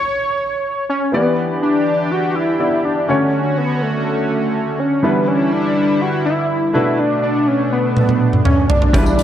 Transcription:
0.00 0.85 C#5 loud
0.89 1.12 C#4 medium
1.12 1.83 E3 medium
1.12 3.07 E3 medium
1.12 2.56 B3 medium
1.12 1.59 B3 medium
1.12 3.07 D4 medium
1.12 2.57 E4 medium
1.12 3.07 G4 loud
1.12 2.57 G4 medium
1.12 2.57 D5 medium
1.62 2.13 D4 medium
2.11 2.37 F#4 medium
2.35 2.86 E4 loud
2.59 3.08 B3 medium
2.59 3.09 E4 soft
2.59 3.09 G4 soft
2.59 3.09 D5 medium
2.85 3.08 D4 medium
3.08 5.02 D3 medium
3.08 3.78 D3 medium
3.08 5.00 A3 medium
3.08 3.59 C#4 loud
3.08 5.00 C#4 medium
3.08 5.02 C#4 medium
3.08 5.02 F#4 medium
3.08 5.00 F#4 medium
3.08 5.01 C#5 medium
3.58 3.84 B3 medium
3.82 4.81 A3 medium
4.79 5.03 C#4 medium
5.03 6.73 D3 medium
5.03 5.73 E3 medium
5.03 6.71 G3 medium
5.03 6.73 G3 medium
5.03 5.29 B3 medium
5.03 6.71 D4 medium
5.03 6.73 E4 loud
5.03 6.71 E4 medium
5.03 6.72 B4 medium
5.28 5.54 C#4 medium
5.52 6.03 D4 loud
6.01 6.25 F#4 loud
6.26 6.71 E4 loud
6.73 8.92 B2 medium
6.73 7.44 B2 medium
6.73 8.65 A3 medium
6.73 8.92 A3 medium
6.73 8.66 D4 medium
6.73 8.92 D4 medium
6.73 7.01 E4 loud
6.73 8.66 F#4 medium
6.73 8.66 B4 medium
6.99 7.22 D4 loud
7.23 7.49 D4 medium
7.47 7.72 C#4 loud
7.72 8.41 B3 loud
7.97 high tom medium
8.09 high tom medium
8.33 mid tom medium
8.45 8.71 C#4 loud
8.45 mid tom medium
8.69 8.93 D4 loud
8.69 floor tom loud
8.82 floor tom medium
8.93 9.22 E1 loud
8.93 9.23 D3 medium
8.93 9.23 E3 medium
8.93 9.23 G3 medium
8.93 9.23 D4 loud
8.93 9.13 D4 medium
8.93 9.23 D4 medium
8.93 9.23 E4 medium
8.93 9.06 G4 medium
8.93 9.04 B4 medium
8.93 9.23 B4 medium
8.93 kick loud
8.93 closed hi-hat loud
9.06 muted clean electric guitar stroke soft
9.06 tambourine soft
9.18 muted clean electric guitar stroke soft
9.18 closed hi-hat medium
9.18 tambourine soft

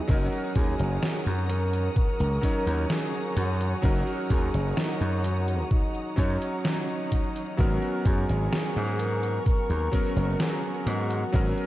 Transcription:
0.00 0.07 F#3 medium
0.00 0.11 B3 medium
0.00 0.08 C#4 medium
0.00 0.11 G#4 medium
0.00 0.11 B4 loud
0.00 11.66 F#5 medium
0.00 11.66 A#5 medium
0.00 7.55 D#6 medium
0.07 0.27 F#1 loud
0.07 2.37 F#3 medium
0.07 2.37 C#4 medium
0.07 2.38 D#4 medium
0.07 0.58 F#4 loud
0.07 2.38 A#4 loud
0.07 7.55 C#5 medium
0.07 kick loud
0.07 closed hi-hat medium
0.32 closed hi-hat soft
0.55 0.74 D#2 medium
0.55 1.23 G#4 loud
0.55 kick loud
0.55 closed hi-hat medium
0.79 0.97 F#1 medium
0.79 closed hi-hat medium
1.03 snare loud
1.03 closed hi-hat medium
1.26 1.88 F#2 medium
1.26 closed hi-hat soft
1.49 1.93 A#4 loud
1.49 closed hi-hat medium
1.73 closed hi-hat medium
1.96 2.92 A#4 loud
1.96 muted slap bass stroke soft
1.96 kick loud
1.96 closed hi-hat medium
2.20 2.38 C#2 medium
2.20 closed hi-hat soft
2.41 3.77 F#3 medium
2.41 3.78 C#4 medium
2.41 3.78 D#4 medium
2.41 3.79 C#5 medium
2.41 kick medium
2.41 closed hi-hat medium
2.67 2.84 D#2 medium
2.67 closed hi-hat medium
2.90 3.39 G#4 loud
2.90 snare loud
2.90 closed hi-hat medium
3.14 closed hi-hat soft
3.37 3.73 F#2 medium
3.37 4.32 F#4 loud
3.37 closed hi-hat medium
3.61 closed hi-hat medium
3.82 4.02 F#1 medium
3.82 6.12 F#3 medium
3.82 6.12 C#4 medium
3.82 6.13 D#4 medium
3.82 6.13 A#4 loud
3.82 kick loud
3.82 closed hi-hat medium
4.07 closed hi-hat soft
4.30 4.49 D#2 medium
4.30 4.79 G#4 loud
4.30 kick loud
4.30 closed hi-hat medium
4.54 4.72 F#1 medium
4.54 closed hi-hat medium
4.77 5.26 D#4 medium
4.77 snare loud
4.77 closed hi-hat medium
5.01 5.62 F#2 medium
5.01 closed hi-hat soft
5.24 5.71 F#4 medium
5.24 closed hi-hat medium
5.48 closed hi-hat soft
5.71 6.34 D#4 medium
5.71 kick loud
5.71 closed hi-hat soft
5.95 closed hi-hat soft
6.16 6.36 F#2 medium
6.16 7.52 F#3 medium
6.16 7.53 C#4 medium
6.16 7.53 D#4 medium
6.16 7.54 C#5 loud
6.16 kick medium
6.16 closed hi-hat medium
6.42 closed hi-hat soft
6.65 7.61 D#4 loud
6.65 snare loud
6.65 closed hi-hat medium
6.89 closed hi-hat soft
7.12 kick medium
7.12 closed hi-hat medium
7.36 closed hi-hat soft
7.57 7.77 G#1 medium
7.57 9.87 F#3 medium
7.57 9.87 B3 medium
7.57 11.66 B3 medium
7.57 9.88 C#4 medium
7.57 8.07 F#4 loud
7.57 9.88 A#4 loud
7.57 11.30 C#6 medium
7.57 kick loud
7.57 closed hi-hat soft
7.82 closed hi-hat soft
8.05 8.24 F#2 medium
8.05 9.01 G#4 loud
8.05 kick loud
8.05 closed hi-hat medium
8.29 8.47 G#1 medium
8.29 closed hi-hat soft
8.52 snare loud
8.52 closed hi-hat soft
8.76 9.38 G#2 medium
8.76 closed hi-hat soft
8.99 9.46 A#4 loud
8.99 closed hi-hat medium
9.23 closed hi-hat soft
9.46 10.42 A#4 loud
9.46 muted slap bass stroke soft
9.46 kick loud
9.46 closed hi-hat soft
9.69 9.88 D#2 medium
9.69 closed hi-hat soft
9.91 11.27 F#3 medium
9.91 11.28 B3 medium
9.91 11.28 C#4 medium
9.91 11.29 A#4 loud
9.91 kick medium
9.91 closed hi-hat medium
10.16 10.34 F#1 medium
10.16 closed hi-hat soft
10.40 10.89 G#4 loud
10.40 snare loud
10.40 closed hi-hat medium
10.64 closed hi-hat soft
10.86 11.23 G#2 loud
10.86 11.54 F#4 loud
10.86 closed hi-hat medium
11.10 closed hi-hat soft
11.32 11.52 G#1 loud
11.32 11.66 F#3 loud
11.32 11.66 B3 medium
11.32 11.66 C#4 medium
11.32 11.66 A#4 loud
11.32 11.66 D#6 medium
11.32 kick loud
11.32 closed hi-hat medium
11.57 closed hi-hat soft

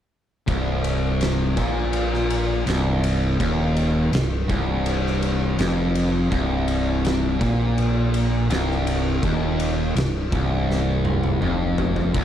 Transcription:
0.47 1.53 C1 loud
0.47 1.57 C2 loud
0.47 kick medium
0.47 ride loud
0.84 ride medium
1.21 snare loud
1.21 ride loud
1.57 2.62 A#1 medium
1.57 2.65 A#2 loud
1.57 kick loud
1.57 ride medium
1.93 ride loud
2.14 snare soft
2.30 ride medium
2.66 3.35 C1 medium
2.66 3.38 C2 medium
2.66 snare loud
2.66 ride loud
3.04 ride medium
3.39 4.08 D#1 medium
3.39 4.11 D#2 loud
3.39 kick medium
3.39 ride loud
3.77 ride medium
4.12 4.46 C1 medium
4.12 4.41 C2 medium
4.12 snare loud
4.12 ride loud
4.48 5.54 C1 medium
4.48 5.57 C2 loud
4.48 kick loud
4.48 ride medium
4.86 ride loud
5.07 snare soft
5.22 ride medium
5.58 6.27 F1 loud
5.58 6.30 F2 loud
5.58 snare loud
5.58 ride loud
5.95 ride medium
6.31 7.37 C1 loud
6.31 7.39 C2 loud
6.31 kick loud
6.31 ride medium
6.68 ride medium
7.05 snare loud
7.05 ride medium
7.40 8.46 A#1 loud
7.40 8.49 A#2 loud
7.40 kick loud
7.40 ride medium
7.78 ride loud
8.14 ride medium
8.49 9.18 C1 medium
8.49 9.21 C2 loud
8.49 snare loud
8.49 ride loud
8.71 snare soft
8.87 ride loud
9.23 9.92 D#1 loud
9.23 9.95 D#2 loud
9.23 kick loud
9.23 ride loud
9.60 ride medium
9.95 10.29 C1 medium
9.95 10.25 C2 medium
9.95 snare loud
9.95 ride loud
10.32 11.37 C1 loud
10.32 11.40 C2 loud
10.32 kick loud
10.32 ride medium
10.71 snare medium
11.05 high tom medium
11.24 high tom medium
11.40 12.09 F1 loud
11.40 12.13 F2 loud
11.40 mid tom loud
11.78 floor tom loud
11.96 floor tom loud
12.14 12.24 C1 medium
12.14 12.24 C2 loud
12.14 kick loud
12.14 crash loud

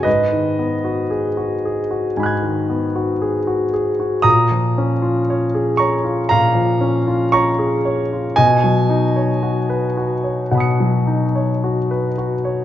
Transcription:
0.03 2.12 G#2 soft
0.03 3.68 B4 medium
0.03 3.71 D#5 medium
0.32 0.74 D#3 soft
0.59 1.01 B3 soft
0.84 1.27 F#4 soft
1.10 1.53 G#4 soft
1.37 1.79 F#4 soft
1.65 2.07 G#4 soft
1.91 2.32 F#4 soft
2.17 4.21 G#2 soft
2.17 4.21 G#5 soft
2.17 4.22 B5 soft
2.23 4.24 F#6 soft
2.23 4.25 G#6 soft
2.43 2.84 D#3 soft
2.70 3.11 B3 soft
2.96 3.37 F#4 soft
3.22 3.63 G#4 soft
3.47 3.88 F#4 soft
3.73 4.15 G#4 soft
4.00 4.25 F#4 soft
4.22 6.26 A#2 soft
4.22 5.75 A#5 medium
4.22 5.78 D#6 loud
4.51 4.93 F3 soft
4.78 5.19 C#4 soft
5.02 5.43 F4 soft
5.30 5.70 C#5 soft
5.55 5.95 G#4 soft
5.77 6.20 C#5 soft
5.77 6.27 A#5 medium
5.77 6.29 C#6 medium
6.04 6.46 F4 soft
6.29 8.33 A#2 soft
6.29 7.30 F5 medium
6.29 7.32 A#5 medium
6.55 6.97 F3 soft
6.81 7.23 C#4 soft
7.07 7.49 F4 soft
7.32 7.75 C#5 soft
7.32 8.32 A#5 medium
7.32 8.35 C#6 medium
7.59 8.00 G#4 soft
7.85 8.26 C#5 soft
8.13 8.37 F4 soft
8.36 10.47 B2 medium
8.36 12.11 D#5 medium
8.36 12.15 G#5 medium
8.64 9.04 F#3 soft
8.89 9.31 D#4 soft
9.16 9.58 C#5 soft
9.43 9.85 F#4 soft
9.70 10.12 B4 soft
9.97 10.40 F#4 soft
10.24 10.68 C#5 soft
10.51 12.64 B2 soft
10.51 12.64 F#5 soft
10.51 12.64 B5 soft
10.58 12.64 D#6 soft
10.58 12.64 C#7 soft
10.80 11.24 F#3 soft
11.07 11.51 D#4 soft
11.36 11.78 C#5 soft
11.64 12.06 F#4 soft
11.91 12.32 B4 soft
12.18 12.59 F#4 soft
12.45 12.64 C#5 soft

